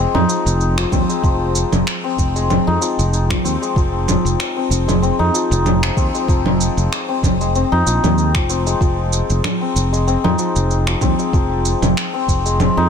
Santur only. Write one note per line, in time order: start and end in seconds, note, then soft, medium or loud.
0.00 0.27 F3 medium
0.00 1.08 G#3 medium
0.00 0.92 C4 medium
0.14 2.67 D#4 medium
0.29 0.76 F3 medium
0.78 1.22 F3 medium
0.92 2.03 C4 medium
1.09 2.34 G#3 medium
1.23 2.80 F3 medium
2.04 2.50 C4 medium
2.36 3.61 G#3 medium
2.50 3.44 C4 medium
2.67 5.19 D#4 medium
2.81 3.29 F3 medium
3.30 3.75 F3 medium
3.44 4.56 C4 loud
3.62 4.87 G#3 medium
3.76 5.33 F3 medium
4.57 5.02 C4 medium
4.88 6.13 G#3 medium
5.02 5.97 C4 medium
5.19 7.72 D#4 medium
5.34 5.82 F3 medium
5.83 6.28 F3 medium
5.97 7.08 C4 loud
6.14 7.40 G#3 medium
6.29 7.85 F3 medium
7.09 7.55 C4 medium
7.41 8.65 G#3 medium
7.55 8.49 C4 medium
7.72 10.24 D#4 loud
7.86 8.34 F3 medium
8.36 8.80 F3 medium
8.50 9.61 C4 medium
8.66 9.91 G#3 medium
8.81 10.37 F3 medium
9.61 10.07 C4 medium
9.93 11.18 G#3 medium
10.07 11.02 C4 medium
10.24 12.77 D#4 medium
10.39 10.86 F3 medium
10.87 11.32 F3 medium
11.02 12.13 C4 medium
11.19 12.44 G#3 medium
11.33 12.89 F3 medium
12.14 12.60 C4 medium
12.46 12.89 G#3 medium
12.60 12.89 C4 medium
12.77 12.89 D#4 loud